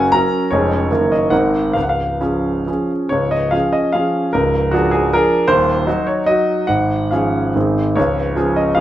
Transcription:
Already playing: F#1 F#2 F#3 C#4 A#4 F#5 G#5
0.12 F#3 C#4 A#4 A#5
0.51 F1 F2 G#3 C#4 G#4 C#5
0.90 F#1 F#2 D#3 A#3 A#4
1.12 D#5
1.30 G#1 G#2 D#3 C4 A#4 F#5
1.73 C#1 C#2 F5
1.82 F#5
1.89 F5
2.20 F3 C#4 G#4
2.67 F3 C#4 G#4
3.09 C#1 C#2 C#5
3.31 D#5
3.51 F3 C#4 G#4 F5
3.73 D#5
3.92 F3 C#4 G#4 F5
4.33 C#1 C#2 A#4
4.71 F3 D4 F#4 G#4
4.91 G#4
5.13 F3 D4 G#4 A#4
5.48 D#1 D#2 C5
5.87 F#3 D#4 F#4
6.07 C#5
6.26 F#3 D#4 F#4 D#5
6.67 G#1 G#2 F#5
7.11 F3 C#4 G#4 F5
7.55 G#1 G#2 D#3 C4 G#4
7.96 C#1 C#2 C#5
8.36 F3 C#4 G#4
8.56 D#5
8.75 F3 C#4 G#4 F5

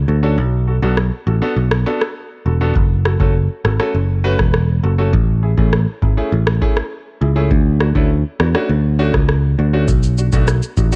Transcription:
0.08 D2 F#4 A4
0.23 C#4 D4 F#4 A4
0.38 B1
0.68 F#4 A4
0.82 B1 B3 D4 F#4 A4
0.97 cross-stick
1.27 A1 F#4 A4
1.42 B3 D4 F#4 A4
1.56 B1
1.71 cross-stick
1.86 B3 D4 F#4 A4
2.01 cross-stick
2.46 E1 F#4 A4
2.61 B3 D4 F#4 A4
2.75 F#1, kick
3.05 F#4 A4, cross-stick
3.20 F#1 A3 C#4 F#4 A4, kick
3.65 G#1 F#4 A4, cross-stick
3.79 A3 C#4 F#4 A4, cross-stick
3.94 F#1
4.24 A3 C#4 F#4 B4
4.39 E1, kick, cross-stick
4.54 cross-stick
4.83 F#1 F#4 A4
4.98 A3 C#4 F#4 A4
5.13 A1, kick
5.43 E4 G#4
5.57 A1 A3 C#4 E4 G#4, kick
5.73 cross-stick
6.02 G#1 E4 G#4, kick
6.17 A3 C#4 E4 G#4
6.32 A1
6.47 cross-stick
6.61 A3 C#4 E4 G#4, kick
6.77 cross-stick
7.21 C#2 E4 G#4
7.36 A3 C#4 E4 G#4
7.51 D2, kick
7.80 D4 F#4, cross-stick
7.95 D2 A3 C#4 D4 E4, kick
8.40 E2 D4 F#4, cross-stick
8.55 A3 C#4 D4 F#4, cross-stick
8.69 D2
8.99 A3 C#4 D4 F#4
9.14 C#2, kick, cross-stick
9.29 cross-stick
9.59 D2 D4 F#4
9.73 A3 C#4 D4 F#4
9.88 B1, kick, shaker
10.03 shaker
10.18 D4 F#4, shaker
10.33 B1 A3 B3 D4 F#4, kick, shaker
10.47 cross-stick, shaker
10.62 shaker
10.77 A1 D4 F#4, kick, shaker
10.92 A3 B3 D4 F#4, shaker

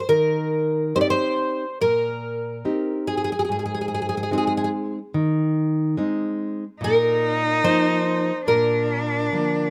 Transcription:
0.00 C5
0.09 D#3 A#4
0.95 C4 D#4 G4 C5
1.01 D5
1.10 C5
1.81 A#2 A#4
2.65 C4 D#4 G4
3.07 G#4
3.17 G#4
3.24 G#4
3.32 G#4
3.39 G#4
3.45 G#4
3.49 G#2 G#4
3.59 G#4
3.66 G#4
3.74 G#4
3.81 G#4
3.88 G#4
3.94 G#4
4.02 G#4
4.09 G#4
4.17 G#4
4.23 G#4
4.31 G#3 C4 D#4 G#4
4.38 G#4
4.47 G#4
4.57 G#4
4.64 G#4
5.14 D#3
5.97 G#3 C4 D#4
6.80 A#2 D#4
6.84 A#4
7.64 F3 A#3 D#4 C5
8.46 A#2 D4 A#4
9.33 D3 F3 A#3

